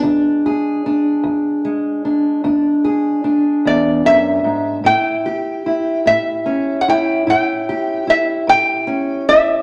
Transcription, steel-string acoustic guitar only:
\new Staff \with { instrumentName = "Steel-string acoustic guitar" } { \time 12/8 \key e \mixolydian \tempo 4. = 50 << { <gis d'>8 gis'8 d'4 gis8 d'8 d'8 gis'8 d'2 | e'8 g'8 e'4 cis'8 e'8 e'8 g'8 e'4 cis'8 e'8 | } \\ { e,4 r8 e,4 r8 e,4 r8 e,8 fis,8 gis,8 | a,4 r8 a,4 r8 a,4 r8 a,4 r8 | } >> }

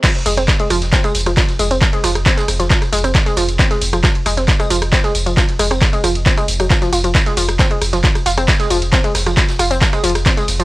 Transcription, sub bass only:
\new Staff \with { instrumentName = "Sub bass" } { \clef bass \time 4/4 \key f \minor \tempo 4 = 135 r8 f,,16 f,,16 r8 f,,16 f,,16 r8 f,,16 f,,16 r8 f,,16 f,,16 | r8 f,,16 f,,16 r8 f,,16 f,,16 r8 f,,16 f,,16 r8 f,,16 f,,16 | r8 f,,16 f,,16 r8 f,,16 f,,16 r8 f,,16 f,,16 r8 f,,16 f,,16 | r8 f,,16 f,,16 r8 f,,16 f,,16 r8 f,,16 f,,16 r8 f,,16 f,,16 |
r8 f,,16 f,,16 r8 f,,16 f,,16 r8 f,,16 f,,16 r8 f,,16 f,,16 | r8 f,,16 f,,16 r8 f,,16 f,,16 r8 f,,16 f,,16 r8 f,,16 f,,16 | }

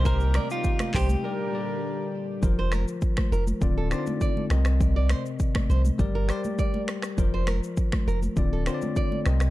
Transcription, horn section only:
\new Staff \with { instrumentName = "Horn section" } { \time 4/4 \key g \minor \tempo 4 = 101 <ees g c' g'>4. r8 <g bes d' bes'>4. r8 | r1 | r1 | r1 | }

